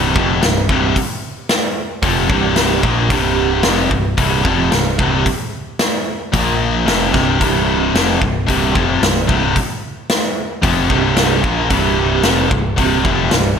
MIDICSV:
0, 0, Header, 1, 4, 480
1, 0, Start_track
1, 0, Tempo, 536673
1, 861, Time_signature, 4, 2, 24, 8
1, 12156, End_track
2, 0, Start_track
2, 0, Title_t, "Overdriven electric guitar"
2, 0, Program_c, 0, 29
2, 0, Note_on_c, 0, 36, 89
2, 0, Note_on_c, 0, 43, 92
2, 0, Note_on_c, 0, 48, 106
2, 127, Note_off_c, 0, 48, 0
2, 129, Note_off_c, 0, 36, 0
2, 131, Note_off_c, 0, 43, 0
2, 133, Note_on_c, 0, 41, 75
2, 138, Note_on_c, 0, 48, 90
2, 142, Note_on_c, 0, 53, 100
2, 364, Note_off_c, 0, 41, 0
2, 368, Note_on_c, 0, 36, 67
2, 369, Note_off_c, 0, 48, 0
2, 373, Note_on_c, 0, 43, 75
2, 374, Note_off_c, 0, 53, 0
2, 566, Note_off_c, 0, 36, 0
2, 569, Note_off_c, 0, 43, 0
2, 608, Note_on_c, 0, 36, 79
2, 612, Note_on_c, 0, 43, 84
2, 619, Note_on_c, 0, 48, 81
2, 847, Note_off_c, 0, 36, 0
2, 849, Note_off_c, 0, 43, 0
2, 853, Note_off_c, 0, 48, 0
2, 1804, Note_on_c, 0, 41, 78
2, 1809, Note_on_c, 0, 48, 94
2, 1818, Note_on_c, 0, 53, 100
2, 2035, Note_off_c, 0, 41, 0
2, 2039, Note_off_c, 0, 48, 0
2, 2039, Note_on_c, 0, 36, 84
2, 2046, Note_off_c, 0, 53, 0
2, 2047, Note_on_c, 0, 43, 90
2, 2050, Note_on_c, 0, 48, 96
2, 2517, Note_off_c, 0, 36, 0
2, 2521, Note_on_c, 0, 46, 82
2, 2525, Note_off_c, 0, 43, 0
2, 2527, Note_off_c, 0, 48, 0
2, 2528, Note_on_c, 0, 53, 73
2, 2532, Note_on_c, 0, 58, 81
2, 2751, Note_off_c, 0, 46, 0
2, 2755, Note_on_c, 0, 36, 93
2, 2757, Note_off_c, 0, 53, 0
2, 2761, Note_on_c, 0, 43, 90
2, 2762, Note_off_c, 0, 58, 0
2, 2766, Note_on_c, 0, 48, 103
2, 3238, Note_off_c, 0, 48, 0
2, 3240, Note_off_c, 0, 36, 0
2, 3243, Note_off_c, 0, 43, 0
2, 3245, Note_on_c, 0, 41, 80
2, 3249, Note_on_c, 0, 48, 90
2, 3254, Note_on_c, 0, 53, 85
2, 3479, Note_off_c, 0, 41, 0
2, 3482, Note_off_c, 0, 48, 0
2, 3483, Note_on_c, 0, 36, 54
2, 3485, Note_on_c, 0, 43, 73
2, 3490, Note_off_c, 0, 53, 0
2, 3683, Note_off_c, 0, 36, 0
2, 3685, Note_off_c, 0, 43, 0
2, 3730, Note_on_c, 0, 36, 93
2, 3737, Note_on_c, 0, 43, 106
2, 3743, Note_on_c, 0, 48, 92
2, 3968, Note_off_c, 0, 36, 0
2, 3971, Note_off_c, 0, 43, 0
2, 3971, Note_off_c, 0, 48, 0
2, 3979, Note_on_c, 0, 41, 82
2, 3982, Note_on_c, 0, 48, 104
2, 3989, Note_on_c, 0, 53, 101
2, 4212, Note_off_c, 0, 41, 0
2, 4214, Note_off_c, 0, 48, 0
2, 4217, Note_off_c, 0, 53, 0
2, 4217, Note_on_c, 0, 36, 57
2, 4220, Note_on_c, 0, 43, 72
2, 4411, Note_off_c, 0, 36, 0
2, 4412, Note_off_c, 0, 43, 0
2, 4447, Note_on_c, 0, 36, 83
2, 4453, Note_on_c, 0, 43, 72
2, 4463, Note_on_c, 0, 48, 82
2, 4687, Note_off_c, 0, 36, 0
2, 4689, Note_off_c, 0, 43, 0
2, 4694, Note_off_c, 0, 48, 0
2, 5653, Note_on_c, 0, 46, 102
2, 5663, Note_on_c, 0, 53, 103
2, 5665, Note_on_c, 0, 58, 88
2, 6127, Note_off_c, 0, 46, 0
2, 6129, Note_off_c, 0, 53, 0
2, 6130, Note_on_c, 0, 41, 92
2, 6136, Note_off_c, 0, 58, 0
2, 6136, Note_on_c, 0, 48, 99
2, 6139, Note_on_c, 0, 53, 91
2, 6369, Note_off_c, 0, 41, 0
2, 6373, Note_off_c, 0, 48, 0
2, 6373, Note_on_c, 0, 36, 78
2, 6374, Note_off_c, 0, 53, 0
2, 6380, Note_on_c, 0, 43, 75
2, 6385, Note_on_c, 0, 48, 86
2, 6596, Note_off_c, 0, 36, 0
2, 6601, Note_off_c, 0, 43, 0
2, 6607, Note_off_c, 0, 48, 0
2, 6607, Note_on_c, 0, 36, 100
2, 6611, Note_on_c, 0, 43, 92
2, 6618, Note_on_c, 0, 48, 103
2, 7088, Note_off_c, 0, 48, 0
2, 7089, Note_off_c, 0, 36, 0
2, 7091, Note_off_c, 0, 43, 0
2, 7095, Note_on_c, 0, 41, 92
2, 7099, Note_on_c, 0, 48, 74
2, 7107, Note_on_c, 0, 53, 90
2, 7333, Note_off_c, 0, 41, 0
2, 7335, Note_off_c, 0, 48, 0
2, 7336, Note_on_c, 0, 36, 54
2, 7338, Note_off_c, 0, 53, 0
2, 7340, Note_on_c, 0, 43, 59
2, 7533, Note_off_c, 0, 36, 0
2, 7534, Note_off_c, 0, 43, 0
2, 7575, Note_on_c, 0, 36, 101
2, 7581, Note_on_c, 0, 43, 98
2, 7586, Note_on_c, 0, 48, 110
2, 7812, Note_off_c, 0, 48, 0
2, 7813, Note_off_c, 0, 36, 0
2, 7816, Note_off_c, 0, 43, 0
2, 7817, Note_on_c, 0, 41, 87
2, 7822, Note_on_c, 0, 48, 78
2, 7826, Note_on_c, 0, 53, 106
2, 8054, Note_off_c, 0, 41, 0
2, 8057, Note_off_c, 0, 48, 0
2, 8059, Note_off_c, 0, 53, 0
2, 8060, Note_on_c, 0, 43, 67
2, 8061, Note_on_c, 0, 36, 65
2, 8255, Note_off_c, 0, 43, 0
2, 8256, Note_off_c, 0, 36, 0
2, 8289, Note_on_c, 0, 36, 77
2, 8299, Note_on_c, 0, 43, 66
2, 8303, Note_on_c, 0, 48, 85
2, 8531, Note_off_c, 0, 36, 0
2, 8536, Note_off_c, 0, 43, 0
2, 8538, Note_off_c, 0, 48, 0
2, 9494, Note_on_c, 0, 41, 89
2, 9496, Note_on_c, 0, 48, 94
2, 9505, Note_on_c, 0, 53, 106
2, 9732, Note_off_c, 0, 41, 0
2, 9734, Note_off_c, 0, 48, 0
2, 9736, Note_on_c, 0, 36, 85
2, 9739, Note_off_c, 0, 53, 0
2, 9742, Note_on_c, 0, 43, 82
2, 9749, Note_on_c, 0, 48, 88
2, 10214, Note_off_c, 0, 36, 0
2, 10217, Note_off_c, 0, 43, 0
2, 10218, Note_on_c, 0, 46, 68
2, 10221, Note_off_c, 0, 48, 0
2, 10225, Note_on_c, 0, 53, 76
2, 10229, Note_on_c, 0, 58, 95
2, 10455, Note_off_c, 0, 46, 0
2, 10459, Note_off_c, 0, 53, 0
2, 10459, Note_on_c, 0, 36, 95
2, 10461, Note_off_c, 0, 58, 0
2, 10465, Note_on_c, 0, 43, 103
2, 10468, Note_on_c, 0, 48, 107
2, 10929, Note_off_c, 0, 36, 0
2, 10931, Note_off_c, 0, 48, 0
2, 10933, Note_on_c, 0, 41, 84
2, 10938, Note_off_c, 0, 43, 0
2, 10941, Note_on_c, 0, 48, 94
2, 10945, Note_on_c, 0, 53, 91
2, 11172, Note_off_c, 0, 41, 0
2, 11176, Note_off_c, 0, 48, 0
2, 11176, Note_on_c, 0, 36, 55
2, 11178, Note_off_c, 0, 53, 0
2, 11183, Note_on_c, 0, 43, 71
2, 11372, Note_off_c, 0, 36, 0
2, 11376, Note_off_c, 0, 43, 0
2, 11416, Note_on_c, 0, 36, 88
2, 11423, Note_on_c, 0, 43, 90
2, 11433, Note_on_c, 0, 48, 94
2, 11648, Note_off_c, 0, 48, 0
2, 11651, Note_off_c, 0, 36, 0
2, 11654, Note_on_c, 0, 41, 93
2, 11655, Note_off_c, 0, 43, 0
2, 11659, Note_on_c, 0, 48, 85
2, 11665, Note_on_c, 0, 53, 99
2, 11892, Note_off_c, 0, 41, 0
2, 11894, Note_off_c, 0, 48, 0
2, 11896, Note_on_c, 0, 36, 63
2, 11897, Note_off_c, 0, 53, 0
2, 11901, Note_on_c, 0, 43, 79
2, 12092, Note_off_c, 0, 36, 0
2, 12094, Note_off_c, 0, 43, 0
2, 12156, End_track
3, 0, Start_track
3, 0, Title_t, "Picked electric bass"
3, 0, Program_c, 1, 34
3, 0, Note_on_c, 1, 24, 98
3, 125, Note_off_c, 1, 24, 0
3, 138, Note_on_c, 1, 29, 90
3, 363, Note_off_c, 1, 29, 0
3, 384, Note_on_c, 1, 24, 84
3, 606, Note_off_c, 1, 24, 0
3, 621, Note_on_c, 1, 24, 85
3, 844, Note_off_c, 1, 24, 0
3, 1813, Note_on_c, 1, 29, 99
3, 2039, Note_off_c, 1, 29, 0
3, 2050, Note_on_c, 1, 24, 101
3, 2501, Note_off_c, 1, 24, 0
3, 2536, Note_on_c, 1, 34, 77
3, 2761, Note_off_c, 1, 34, 0
3, 2778, Note_on_c, 1, 24, 93
3, 3225, Note_off_c, 1, 24, 0
3, 3262, Note_on_c, 1, 29, 84
3, 3484, Note_off_c, 1, 29, 0
3, 3497, Note_on_c, 1, 24, 74
3, 3721, Note_off_c, 1, 24, 0
3, 3736, Note_on_c, 1, 24, 91
3, 3961, Note_off_c, 1, 24, 0
3, 3978, Note_on_c, 1, 29, 88
3, 4202, Note_off_c, 1, 29, 0
3, 4222, Note_on_c, 1, 24, 86
3, 4444, Note_off_c, 1, 24, 0
3, 4463, Note_on_c, 1, 24, 80
3, 4685, Note_off_c, 1, 24, 0
3, 5670, Note_on_c, 1, 34, 91
3, 6113, Note_off_c, 1, 34, 0
3, 6144, Note_on_c, 1, 29, 92
3, 6367, Note_off_c, 1, 29, 0
3, 6390, Note_on_c, 1, 24, 88
3, 6611, Note_off_c, 1, 24, 0
3, 6630, Note_on_c, 1, 24, 80
3, 7074, Note_off_c, 1, 24, 0
3, 7108, Note_on_c, 1, 29, 84
3, 7330, Note_off_c, 1, 29, 0
3, 7346, Note_on_c, 1, 24, 69
3, 7569, Note_off_c, 1, 24, 0
3, 7589, Note_on_c, 1, 24, 94
3, 7810, Note_off_c, 1, 24, 0
3, 7832, Note_on_c, 1, 29, 97
3, 8053, Note_off_c, 1, 29, 0
3, 8063, Note_on_c, 1, 24, 83
3, 8288, Note_off_c, 1, 24, 0
3, 8306, Note_on_c, 1, 24, 84
3, 8530, Note_off_c, 1, 24, 0
3, 9511, Note_on_c, 1, 29, 98
3, 9732, Note_off_c, 1, 29, 0
3, 9749, Note_on_c, 1, 24, 94
3, 10194, Note_off_c, 1, 24, 0
3, 10229, Note_on_c, 1, 34, 87
3, 10451, Note_off_c, 1, 34, 0
3, 10468, Note_on_c, 1, 24, 92
3, 10914, Note_off_c, 1, 24, 0
3, 10946, Note_on_c, 1, 29, 83
3, 11169, Note_off_c, 1, 29, 0
3, 11186, Note_on_c, 1, 24, 71
3, 11409, Note_off_c, 1, 24, 0
3, 11430, Note_on_c, 1, 24, 92
3, 11651, Note_off_c, 1, 24, 0
3, 11672, Note_on_c, 1, 29, 97
3, 11891, Note_off_c, 1, 29, 0
3, 11914, Note_on_c, 1, 24, 86
3, 12132, Note_off_c, 1, 24, 0
3, 12156, End_track
4, 0, Start_track
4, 0, Title_t, "Drums"
4, 140, Note_on_c, 9, 36, 102
4, 230, Note_off_c, 9, 36, 0
4, 381, Note_on_c, 9, 46, 49
4, 382, Note_on_c, 9, 38, 105
4, 471, Note_off_c, 9, 46, 0
4, 472, Note_off_c, 9, 38, 0
4, 619, Note_on_c, 9, 36, 103
4, 708, Note_off_c, 9, 36, 0
4, 859, Note_on_c, 9, 36, 84
4, 862, Note_on_c, 9, 46, 54
4, 949, Note_off_c, 9, 36, 0
4, 951, Note_off_c, 9, 46, 0
4, 1335, Note_on_c, 9, 46, 50
4, 1336, Note_on_c, 9, 38, 101
4, 1425, Note_off_c, 9, 46, 0
4, 1426, Note_off_c, 9, 38, 0
4, 1812, Note_on_c, 9, 46, 47
4, 1813, Note_on_c, 9, 36, 90
4, 1901, Note_off_c, 9, 46, 0
4, 1902, Note_off_c, 9, 36, 0
4, 2054, Note_on_c, 9, 36, 100
4, 2143, Note_off_c, 9, 36, 0
4, 2289, Note_on_c, 9, 46, 49
4, 2290, Note_on_c, 9, 38, 86
4, 2379, Note_off_c, 9, 46, 0
4, 2380, Note_off_c, 9, 38, 0
4, 2534, Note_on_c, 9, 36, 99
4, 2624, Note_off_c, 9, 36, 0
4, 2775, Note_on_c, 9, 36, 104
4, 2776, Note_on_c, 9, 46, 48
4, 2864, Note_off_c, 9, 36, 0
4, 2866, Note_off_c, 9, 46, 0
4, 3249, Note_on_c, 9, 46, 51
4, 3250, Note_on_c, 9, 38, 119
4, 3338, Note_off_c, 9, 46, 0
4, 3339, Note_off_c, 9, 38, 0
4, 3497, Note_on_c, 9, 36, 89
4, 3587, Note_off_c, 9, 36, 0
4, 3737, Note_on_c, 9, 36, 100
4, 3737, Note_on_c, 9, 46, 53
4, 3826, Note_off_c, 9, 36, 0
4, 3826, Note_off_c, 9, 46, 0
4, 3979, Note_on_c, 9, 36, 95
4, 4068, Note_off_c, 9, 36, 0
4, 4220, Note_on_c, 9, 46, 51
4, 4221, Note_on_c, 9, 38, 99
4, 4310, Note_off_c, 9, 46, 0
4, 4311, Note_off_c, 9, 38, 0
4, 4463, Note_on_c, 9, 36, 104
4, 4552, Note_off_c, 9, 36, 0
4, 4704, Note_on_c, 9, 36, 103
4, 4709, Note_on_c, 9, 46, 53
4, 4794, Note_off_c, 9, 36, 0
4, 4799, Note_off_c, 9, 46, 0
4, 5181, Note_on_c, 9, 46, 54
4, 5182, Note_on_c, 9, 38, 117
4, 5271, Note_off_c, 9, 38, 0
4, 5271, Note_off_c, 9, 46, 0
4, 5667, Note_on_c, 9, 36, 101
4, 5668, Note_on_c, 9, 46, 54
4, 5756, Note_off_c, 9, 36, 0
4, 5758, Note_off_c, 9, 46, 0
4, 6152, Note_on_c, 9, 38, 92
4, 6152, Note_on_c, 9, 46, 50
4, 6241, Note_off_c, 9, 46, 0
4, 6242, Note_off_c, 9, 38, 0
4, 6388, Note_on_c, 9, 36, 94
4, 6393, Note_on_c, 9, 38, 30
4, 6477, Note_off_c, 9, 36, 0
4, 6483, Note_off_c, 9, 38, 0
4, 6627, Note_on_c, 9, 36, 89
4, 6635, Note_on_c, 9, 46, 48
4, 6717, Note_off_c, 9, 36, 0
4, 6724, Note_off_c, 9, 46, 0
4, 7115, Note_on_c, 9, 46, 50
4, 7116, Note_on_c, 9, 38, 115
4, 7204, Note_off_c, 9, 46, 0
4, 7205, Note_off_c, 9, 38, 0
4, 7348, Note_on_c, 9, 36, 96
4, 7438, Note_off_c, 9, 36, 0
4, 7589, Note_on_c, 9, 36, 91
4, 7597, Note_on_c, 9, 46, 49
4, 7678, Note_off_c, 9, 36, 0
4, 7687, Note_off_c, 9, 46, 0
4, 7830, Note_on_c, 9, 36, 99
4, 7919, Note_off_c, 9, 36, 0
4, 8075, Note_on_c, 9, 46, 51
4, 8076, Note_on_c, 9, 38, 109
4, 8165, Note_off_c, 9, 46, 0
4, 8166, Note_off_c, 9, 38, 0
4, 8310, Note_on_c, 9, 36, 97
4, 8399, Note_off_c, 9, 36, 0
4, 8550, Note_on_c, 9, 36, 94
4, 8555, Note_on_c, 9, 46, 47
4, 8640, Note_off_c, 9, 36, 0
4, 8645, Note_off_c, 9, 46, 0
4, 9030, Note_on_c, 9, 46, 54
4, 9031, Note_on_c, 9, 38, 111
4, 9119, Note_off_c, 9, 46, 0
4, 9120, Note_off_c, 9, 38, 0
4, 9510, Note_on_c, 9, 36, 105
4, 9516, Note_on_c, 9, 46, 49
4, 9599, Note_off_c, 9, 36, 0
4, 9605, Note_off_c, 9, 46, 0
4, 9748, Note_on_c, 9, 36, 95
4, 9838, Note_off_c, 9, 36, 0
4, 9987, Note_on_c, 9, 46, 49
4, 9988, Note_on_c, 9, 38, 101
4, 10077, Note_off_c, 9, 38, 0
4, 10077, Note_off_c, 9, 46, 0
4, 10231, Note_on_c, 9, 36, 99
4, 10320, Note_off_c, 9, 36, 0
4, 10469, Note_on_c, 9, 36, 96
4, 10471, Note_on_c, 9, 46, 45
4, 10558, Note_off_c, 9, 36, 0
4, 10560, Note_off_c, 9, 46, 0
4, 10942, Note_on_c, 9, 46, 50
4, 10943, Note_on_c, 9, 38, 107
4, 11032, Note_off_c, 9, 46, 0
4, 11033, Note_off_c, 9, 38, 0
4, 11190, Note_on_c, 9, 36, 96
4, 11279, Note_off_c, 9, 36, 0
4, 11429, Note_on_c, 9, 46, 44
4, 11430, Note_on_c, 9, 36, 94
4, 11519, Note_off_c, 9, 36, 0
4, 11519, Note_off_c, 9, 46, 0
4, 11670, Note_on_c, 9, 36, 95
4, 11760, Note_off_c, 9, 36, 0
4, 11906, Note_on_c, 9, 46, 46
4, 11907, Note_on_c, 9, 38, 101
4, 11996, Note_off_c, 9, 46, 0
4, 11997, Note_off_c, 9, 38, 0
4, 12156, End_track
0, 0, End_of_file